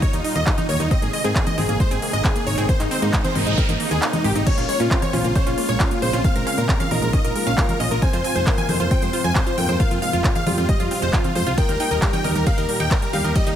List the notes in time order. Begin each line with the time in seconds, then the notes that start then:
Already playing: A#2 D#3 G3 D#4 F4
0.02 A#3 C#5, kick, closed hi-hat
0.13 D#2 G3 D#4, closed hi-hat
0.24 D#4, open hi-hat
0.35 D#2 A#3 D#5, closed hi-hat
0.47 G3 D#4, kick, clap, closed hi-hat
0.58 D#4, closed hi-hat, high conga
0.69 D#2 A#3 C#5, open hi-hat
0.80 D#2 G3 D#4, closed hi-hat
0.91 C3 G#3 A#3 C4 D#4 D#5, kick, closed hi-hat
1.02 G#1 A#3 G#4, closed hi-hat
1.13 G#3 D#5, open hi-hat
1.24 G#2 C4 G#4, closed hi-hat
1.35 A#3 G#4, kick, clap, closed hi-hat
1.47 G#3 D#5, closed hi-hat, high conga
1.58 G#1 C4 G#4, open hi-hat, high conga
1.69 G#1 A#3 G#4, closed hi-hat
1.80 G#3 C5, kick, closed hi-hat
1.91 G#1 C4 G#4, closed hi-hat
2.02 A#3 G#4, open hi-hat
2.13 G#1 G#3 D#5, closed hi-hat
2.24 C4 G#4, kick, clap, closed hi-hat
2.35 A#3 G#4, closed hi-hat
2.47 G#1 G#3 C#5, open hi-hat
2.58 G#1 C4 G#4, closed hi-hat
2.69 A#3 C5, kick, closed hi-hat, noise sweep
2.80 G#1 G#3 D#4, clap, closed hi-hat
2.91 C4 C5, open hi-hat
3.02 G#2 A#3 D#4, closed hi-hat
3.13 G#3 D#4, kick, clap, closed hi-hat
3.24 C4 C5, closed hi-hat, high conga
3.35 G#1 A#3 D#4, open hi-hat, high conga
3.46 G#1 G#3 D#4, closed hi-hat
3.58 C4 A#4, kick, closed hi-hat
3.69 G#1 A#3 D#4, closed hi-hat, high conga
3.80 A#3 D#4, open hi-hat
3.91 D#2 G#3 G#4, closed hi-hat
4.02 A#3 D#4, clap, closed hi-hat
4.13 G#3 D#4, closed hi-hat, high conga
4.24 G#1 G#3 G4, open hi-hat
4.35 G#1 C4 D#4, closed hi-hat
4.46 C#3 F3 G#3 C#4 F4 C#5, kick, closed hi-hat, crash
4.58 A#1 A#3 F4, closed hi-hat
4.69 G#3 C#5, open hi-hat
4.80 A#2 C#4 F4, closed hi-hat
4.91 A#3 C4 F4 C5, kick, clap, closed hi-hat
5.02 G#3 C#5, closed hi-hat, high conga
5.13 A#1 C#4 F4, open hi-hat, high conga
5.24 A#1 A#3 F4, closed hi-hat
5.35 G#3 C#4 C5 C#5, kick, closed hi-hat
5.47 A#1 C#4 F4, closed hi-hat
5.58 A#3 F4, open hi-hat
5.69 A#1 G#3 C#5, closed hi-hat
5.80 C#4 F4, kick, clap, closed hi-hat
5.91 A#3 F4, closed hi-hat
6.02 A#1 G#3 C4 C5, open hi-hat
6.13 A#1 C#4 F4, closed hi-hat
6.24 A#3 F5, kick, closed hi-hat
6.36 A#1 G#3 A#4, closed hi-hat
6.47 C#4 F5, open hi-hat
6.58 A#2 A#3 A#4, closed hi-hat
6.69 G#3 A#4, kick, clap, closed hi-hat
6.80 C#4 F5, closed hi-hat, high conga
6.91 A#1 A#3 D#4 A#4 D#5, open hi-hat, high conga
7.02 A#1 G#3 A#4, closed hi-hat
7.13 C#4 D#5, kick, closed hi-hat
7.24 A#1 A#3 A#4, closed hi-hat
7.35 G#3 A#4, open hi-hat
7.46 A#1 C#4 F5, closed hi-hat
7.58 A#3 F4 A#4 F5, kick, clap, closed hi-hat
7.69 G#3 A#4, closed hi-hat, high conga
7.80 A#1 C#4 D#5, open hi-hat
7.91 A#1 A#3 A#4, closed hi-hat
8.02 G#2 C3 G#3 C4 C5 G#5, kick, closed hi-hat
8.13 F2 F4 C5, closed hi-hat
8.24 C4 G#5, open hi-hat
8.35 F1 G#3 C5, closed hi-hat
8.47 A#3 F4 A#4 C5, kick, clap, closed hi-hat
8.58 C4 G#5, closed hi-hat, high conga
8.69 F2 G#3 C5, open hi-hat, high conga
8.80 F2 F4 C5, closed hi-hat
8.91 C4 C5 G5, kick, closed hi-hat
9.02 F2 G#3 C5, closed hi-hat
9.13 F4 C5, open hi-hat
9.24 F2 C4 G#5, closed hi-hat
9.35 G#3 C5, kick, clap, closed hi-hat
9.47 F4 C5, closed hi-hat
9.58 F2 A#3 C4 A#4 G5, open hi-hat
9.69 F2 G#3 C5, closed hi-hat
9.80 F4 F5, kick, closed hi-hat
9.91 F2 C4 F4, closed hi-hat
10.02 G#3 F5, open hi-hat
10.13 F1 F4, closed hi-hat
10.24 C4 F4, kick, clap, closed hi-hat
10.35 G#3 F5, closed hi-hat, high conga
10.47 F2 G3 F4 G4, open hi-hat, high conga
10.58 F2 C4 F4, closed hi-hat
10.69 G#3 D#5, kick, closed hi-hat
10.80 F2 F4, closed hi-hat
10.91 C4 F4, open hi-hat
11.02 F1 G#3 C5, closed hi-hat
11.13 F3 F4, kick, clap, closed hi-hat
11.24 C4 F4, closed hi-hat, high conga
11.35 F2 G#3 C5, open hi-hat
11.47 C2 F4, closed hi-hat
11.58 A#2 D#3 G3 A#3 D#4 G4 A#4 D#5 G5, kick, closed hi-hat, ride
11.69 D#2 G3 A#4, closed hi-hat
11.80 D#4 G5, open hi-hat
11.91 D#1 A#4 D#5, closed hi-hat
12.02 G3 G4 A#4, kick, clap, closed hi-hat, ride
12.13 D#4 G5, closed hi-hat, high conga
12.24 D#2 A#4 D#5, open hi-hat, high conga
12.35 D#2 G3 A#4, closed hi-hat
12.47 A#3 D#4 A#4 F5, kick, closed hi-hat, ride
12.58 D#2 A#4 D#5, closed hi-hat
12.69 G3 A#4, open hi-hat
12.80 D#2 D#4 G5, closed hi-hat
12.91 A#4 D#5, kick, clap, closed hi-hat, ride
13.02 G3 A#4, closed hi-hat
13.13 D#2 G3 D#4 G4 F5, open hi-hat
13.24 D#2 A#4 D#5, closed hi-hat
13.35 G3 D#5, kick, closed hi-hat, ride
13.47 D#2 D#4, closed hi-hat